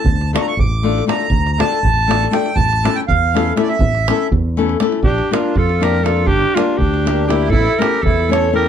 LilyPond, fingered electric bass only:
\new Staff \with { instrumentName = "Fingered electric bass" } { \clef bass \time 5/8 \tempo 4 = 121 d,4 a,,4. | d,4 a,,4. | a,,4 e,4. | a,,4 e,4. |
bes,,8 r8 f,4. | g,,8 r8 d,4. | a,,8 r8 e,4. | }